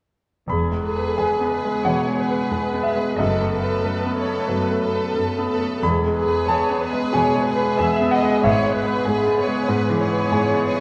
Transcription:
0.48 double bass section E1, grand piano E2 B5, cello section E2, french horn section G#3 B3, viola section G#4
0.72 grand piano G#3
0.83 violin section G#4 B4, viola section A4
0.96 grand piano B4
1.17 cello section E2, grand piano G#4 G#5, viola section B4
1.40 grand piano B3
1.52 violin section G#4 B4
1.65 grand piano G#3
1.85 cello section E2, grand piano B2 F#5, viola section C#5
2.07 grand piano G#3
2.18 violin section G#4 B4, viola section B4
2.30 grand piano B4
2.51 cello section E2, grand piano G#4
2.73 grand piano B3
2.83 violin section G#4 B4, grand piano E5
2.96 grand piano G#3
3.16 double bass section F#1, cello section F#2, grand piano F#2 D#5, french horn section A3, viola section A4, violin section A4 B4
3.40 grand piano A3
3.52 violin section A4 B4
3.62 grand piano B4
3.84 cello section F#2, grand piano A4, viola section B4
4.05 grand piano B3
4.17 violin section A4 B4, viola section C#5
4.28 grand piano A3
4.49 cello section F#2, grand piano F#3, viola section B4
4.71 grand piano A3
4.82 viola section A4, violin section A4 B4
4.93 grand piano B4
5.15 cello section F#2, grand piano A4
5.38 grand piano B3
5.49 violin section A4 B4
5.61 grand piano A3
5.82 double bass section E1, cello section E2, grand piano E2 B5, french horn section G#3 B3, viola section G#4
6.06 grand piano G#3
6.16 viola section G#4, violin section G#4 B4
6.28 grand piano B4
6.48 cello section E2, grand piano G#4 A5, viola section C#5
6.70 grand piano B3
6.81 violin section G#4 B4, viola section B4
6.93 grand piano G#3
7.12 cello section E2, grand piano B2 G#5, viola section C#5
7.35 grand piano G#3
7.45 violin section G#4 B4, viola section B4
7.55 grand piano B4
7.78 cello section E2, grand piano G#4, viola section E5
8.01 grand piano B3
8.11 violin section G#4 B4, viola section D#5, grand piano F#5
8.23 grand piano G#3
8.43 double bass section G#1, cello section G#2, grand piano G#2 E5, violin section G#4 B4, viola section C#5
8.64 grand piano G#3
8.75 violin section G#4 B4, viola section B4
8.85 grand piano B4
9.05 cello section G#2, grand piano G#4, viola section G#4
9.27 grand piano B3
9.37 violin section G#4 B4, viola section C#5
9.47 grand piano G#3
9.68 grand piano G#2, cello section G#2, viola section B4
9.90 grand piano E3
9.99 violin section G#4 B4, viola section C#5
10.11 grand piano B4
10.32 cello section G#2, grand piano G#4
10.54 grand piano B3
10.65 violin section G#4 B4
10.74 grand piano G#3

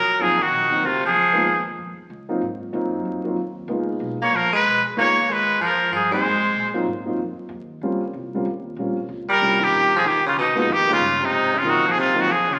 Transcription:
Already playing: baritone saxophone F#3, muted trumpet A#4
0.06 muted upright bass stroke
0.18 upright bass G#1, grand piano F#3 A#3 C4 D#4 F4, muted trumpet G#4
0.22 baritone saxophone F3
0.39 baritone saxophone D#3, muted trumpet F#4
0.50 upright bass A#1
0.70 grand piano F#3 A#3 C4 D#4 F#4, muted upright bass stroke
0.82 upright bass D2, baritone saxophone C3, muted trumpet F4
1.05 baritone saxophone F3, muted trumpet G#4
1.15 upright bass C#2
1.33 grand piano G#3 A#3 B3 D#4 F4
1.46 upright bass D#2
1.78 upright bass F2
1.97 muted upright bass stroke
2.10 upright bass C#2
2.29 grand piano F#3 A#3 C4 D#4 F4
2.41 upright bass G#2
2.73 upright bass F#2, grand piano F#3 A#3 C4 D#4 F4
3.05 upright bass F2
3.25 grand piano F#3 A#3 C4 D#4 F4
3.36 upright bass D#2
3.68 upright bass C#2, grand piano G#3 A#3 B3 D#4 F4
4.00 upright bass B1
4.22 baritone saxophone A#3, muted trumpet C#5
4.32 upright bass A#1, baritone saxophone F3, muted trumpet A#4
4.52 baritone saxophone G#3, muted trumpet B4
4.64 upright bass B1
4.96 upright bass C#2, grand piano G#3 A#3 B3 D#4 F4, baritone saxophone A#3, muted trumpet C#5
5.28 upright bass D#2, baritone saxophone G#3
5.32 muted trumpet B4
5.59 upright bass F2, baritone saxophone F3, muted trumpet A#4
5.91 upright bass G2, baritone saxophone F3, muted trumpet G#4
6.11 grand piano F#3 A#3 C4 D#4 F#4, baritone saxophone G#3, muted trumpet C5
6.23 upright bass G#2
6.54 upright bass A#2
6.74 grand piano F#3 A#3 C4 D#4 F4
6.86 upright bass G#2
7.06 grand piano F#3 A#3 C4 D#4 F4
7.17 upright bass F2
7.37 muted upright bass stroke
7.49 upright bass D#2
7.81 upright bass C#2, grand piano G3 A#3 C4 C#4 F4
8.13 upright bass C2
8.35 grand piano G3 A#3 C4 C#4 F4
8.46 upright bass D#2
8.76 upright bass A#1, grand piano G3 A#3 C4 C#4 F4
9.09 upright bass C#2
9.29 baritone saxophone G3, muted trumpet A#4
9.40 upright bass C2, grand piano G3 A#3 C4 C#4 F4
9.60 baritone saxophone D#3, muted trumpet G4
9.72 upright bass A#1
9.96 baritone saxophone F3, muted trumpet G#4
10.04 upright bass C#2, baritone saxophone D#3
10.08 muted trumpet G4
10.26 baritone saxophone C#3, muted trumpet F4
10.36 upright bass D#2, baritone saxophone B2, muted trumpet D#4
10.55 baritone saxophone B2, grand piano G#3 A#3 B3 D#4 F4
10.59 muted trumpet D#4
10.66 upright bass F2, baritone saxophone D#3
10.73 muted trumpet G4
10.88 baritone saxophone C#3, grand piano G#3 A#3 B3 D#4 F4
10.93 muted trumpet F4
10.99 upright bass G2
11.21 baritone saxophone C3
11.25 muted trumpet D#4
11.31 upright bass G#2
11.54 baritone saxophone C#3
11.58 upright bass A#2, muted trumpet F4
11.63 baritone saxophone D#3, grand piano F#3 A#3 C4 D#4 F4
11.69 muted trumpet F#4
11.87 baritone saxophone F3
11.91 muted trumpet G#4
11.95 upright bass F#2, baritone saxophone C3
12.00 muted trumpet F4
12.14 baritone saxophone D#3, grand piano F#3 A#3 C4 D#4 F4
12.21 muted trumpet F#4
12.27 upright bass F2, baritone saxophone F3
12.32 muted trumpet G#4
12.49 baritone saxophone C#3
12.54 muted trumpet F4

